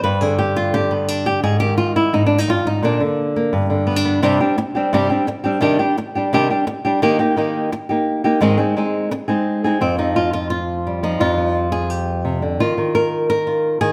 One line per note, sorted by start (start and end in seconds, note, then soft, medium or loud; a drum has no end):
0.04 1.42 G2 medium
0.04 0.21 B4 medium
0.21 0.73 D3 medium
0.21 0.38 G#4 medium
0.39 0.56 G4 medium
0.56 0.74 F4 medium
0.74 1.42 D3 medium
0.74 0.91 G4 loud
0.91 1.08 B3 soft
1.08 1.26 D4 medium
1.26 1.43 G4 medium
1.43 2.12 G#2 medium
1.43 1.59 G#4 medium
1.60 2.81 D#3 medium
1.60 1.77 G4 loud
1.78 1.96 F4 medium
1.96 2.14 E4 medium
2.13 2.48 G#2 medium
2.13 2.25 D#4 medium
2.26 2.38 D4 medium
2.38 2.49 D#4 medium
2.48 2.65 G2 medium
2.48 2.67 F4 medium
2.65 2.83 G#2 medium
2.65 2.84 D#4 medium
2.82 3.00 A#2 medium
2.82 2.99 D3 soft
2.82 3.35 A#3 medium
2.82 3.01 D4 medium
3.00 3.69 D3 medium
3.36 3.51 A#3 soft
3.53 4.21 G2 medium
3.70 4.23 D3 medium
3.87 3.96 B3 medium
3.96 4.22 D4 soft
4.05 4.21 B3 medium
4.22 4.39 G2 medium
4.22 4.40 C3 medium
4.22 4.40 G3 medium
4.22 4.40 C4 medium
4.22 4.40 D4 medium
4.22 4.39 G4 medium
4.40 4.57 G3 soft
4.40 4.57 C4 soft
4.40 4.57 D4 soft
4.40 4.57 G4 soft
4.58 muted nylon-string guitar stroke medium
4.75 4.93 G3 soft
4.75 4.93 C4 soft
4.75 4.92 D4 soft
4.75 4.92 G4 soft
4.93 5.10 G2 medium
4.93 5.10 C3 medium
4.93 5.10 G3 medium
4.93 5.10 C4 medium
4.93 5.09 D4 medium
4.93 5.08 G4 medium
5.10 5.27 G3 soft
5.10 5.27 C4 soft
5.10 5.27 D4 soft
5.10 5.27 G4 soft
5.27 muted nylon-string guitar stroke medium
5.44 5.60 G3 soft
5.44 5.61 C4 soft
5.44 5.61 D4 soft
5.44 5.61 G4 medium
5.61 5.78 C3 medium
5.61 5.79 D#3 medium
5.61 5.79 G3 medium
5.61 5.78 D4 medium
5.61 5.78 G4 medium
5.79 5.97 G3 soft
5.79 5.96 D4 soft
5.79 5.96 G4 medium
5.97 muted nylon-string guitar stroke medium
6.15 6.33 G3 soft
6.15 6.32 D4 soft
6.15 6.32 G4 soft
6.33 6.49 C3 medium
6.33 6.50 D#3 medium
6.33 6.50 G3 medium
6.33 6.50 D4 medium
6.33 6.49 G4 medium
6.50 6.66 G3 soft
6.50 6.66 D4 soft
6.50 6.66 G4 soft
6.67 muted nylon-string guitar stroke medium
6.85 7.02 G3 soft
6.85 7.02 D4 soft
6.85 7.01 G4 medium
7.02 7.19 D#3 medium
7.02 7.19 A#3 medium
7.02 7.19 D#4 medium
7.02 7.18 G4 medium
7.19 7.36 A#3 soft
7.19 7.36 D#4 soft
7.19 7.36 G4 medium
7.36 7.71 D#3 soft
7.36 7.71 A#3 soft
7.36 7.71 D#4 medium
7.36 7.72 G4 medium
7.72 muted nylon-string guitar stroke medium
7.89 8.24 A#3 soft
7.89 8.24 D#4 soft
7.89 8.23 G4 soft
8.24 8.42 A#3 soft
8.24 8.41 D#4 soft
8.24 8.41 G4 medium
8.41 8.58 G#2 medium
8.41 8.58 D#3 medium
8.41 8.58 G#3 medium
8.41 8.58 C4 medium
8.41 8.58 D#4 medium
8.41 8.56 G#4 medium
8.57 8.75 G#3 soft
8.57 8.76 C4 soft
8.57 8.76 D#4 medium
8.57 8.75 G#4 medium
8.77 9.10 G#3 soft
8.77 9.11 C4 medium
8.77 9.11 D#4 medium
8.77 9.11 G#4 medium
9.11 muted nylon-string guitar stroke medium
9.28 9.63 G#3 soft
9.28 9.63 C4 soft
9.28 9.63 D#4 soft
9.28 9.63 G#4 soft
9.64 9.82 G#3 soft
9.64 9.80 C4 soft
9.64 9.81 D#4 soft
9.64 9.81 G#4 soft
9.81 11.18 F2 medium
9.81 9.98 C4 medium
9.98 11.03 F3 medium
9.98 10.51 D#4 medium
10.16 10.32 F4 medium
10.33 10.49 F4 medium
10.50 11.20 F4 medium
10.87 12.60 G3 soft
11.03 11.37 F3 medium
11.03 11.56 D#4 medium
11.20 12.58 F2 medium
11.20 11.72 F4 medium
11.38 12.42 F3 medium
11.72 11.90 G#4 medium
11.90 12.60 G4 medium
12.25 12.42 C3 medium
12.42 12.60 D3 medium
12.60 12.77 D#3 medium
12.60 13.30 F4 medium
12.78 13.81 D#3 medium
12.95 13.28 A#4 medium
13.30 13.80 A#4 loud
13.47 13.93 F4 soft
13.81 13.93 D#3 medium
13.81 13.93 G#4 medium